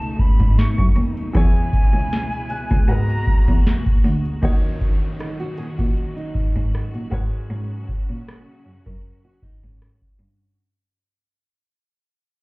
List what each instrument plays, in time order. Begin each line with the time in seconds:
Already playing: cello C#2, grand piano B2 A3 D#4 C#5, string section B2 C#3 A3 D#4, flute A5, synth bell D#6
0.02 closed hi-hat
0.19 cello G#2, flute B5, kick
0.40 cello G#2, kick, closed hi-hat
0.58 flute C#6, snare, closed hi-hat
0.78 cello F#2, kick, closed hi-hat
0.96 cello D#2, closed hi-hat
1.17 closed hi-hat
1.33 cello E2, grand piano E3 B3 G#4 C#5, string section G#3 E4, flute G#5, kick, closed hi-hat
1.56 closed hi-hat
1.73 kick, closed hi-hat
1.94 cello C#2
2.12 snare, closed hi-hat
2.32 closed hi-hat
2.50 cello C#2, synth bell F#6, closed hi-hat
2.71 cello C#2, kick, closed hi-hat
2.88 cello G#2, string section A#2 F#4, grand piano G#3 F#4 A#4 B4, flute A#5, closed hi-hat
3.10 closed hi-hat
3.27 cello E2, kick
3.48 cello E2, kick, closed hi-hat
3.66 snare, closed hi-hat
3.86 kick, closed hi-hat
4.04 cello D2, open hi-hat
4.25 closed hi-hat
4.42 cello D#2, grand piano D#3 D#4 F#4 C#5, string section D#3 F#3 C#4 F#4, kick, closed hi-hat, downlifter
4.64 closed hi-hat
4.81 kick, closed hi-hat
5.19 nylon-string guitar D#4, cross-stick, closed hi-hat
5.40 nylon-string guitar F#4, closed hi-hat
5.57 cello A#2, nylon-string guitar G#4, closed hi-hat
5.78 cello A#2, nylon-string guitar F#4, kick, closed hi-hat
5.97 closed hi-hat
6.16 nylon-string guitar D#4, closed hi-hat
6.35 cello G#2, kick
6.56 cello G#2, kick, closed hi-hat
6.74 cross-stick, closed hi-hat
6.94 cello A#2, closed hi-hat
7.10 cello G#2, string section C#3 C#4, grand piano G#3 F#4 A#4 B4 C#5, kick, closed hi-hat
7.33 closed hi-hat
7.50 cello G#2
7.89 kick
8.09 cello A#2
8.28 cross-stick
8.65 cello F#2
8.86 cello F#2, nylon-string guitar A#4, kick
9.25 nylon-string guitar F#4
9.43 cello G#2, nylon-string guitar D#4, kick
9.63 cello G#2, nylon-string guitar C#4, kick
9.82 cross-stick
10.02 kick
10.19 cello G2